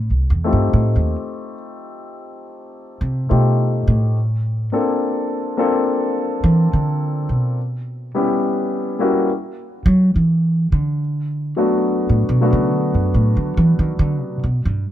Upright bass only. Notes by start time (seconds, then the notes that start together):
0.10 C2
0.30 E2
0.53 G2
0.74 A2
0.96 D#2
3.01 C3
3.31 B2
3.88 A2
6.44 E3
6.73 D3
7.29 B2
9.86 F#3
10.16 E3
10.72 D3
12.09 A2
12.29 B2
12.53 C#3
12.74 D3
12.94 F#2
13.14 A2
13.37 D3
13.57 E3
13.79 D#3
13.99 D3
14.22 C3
14.44 B2
14.65 G2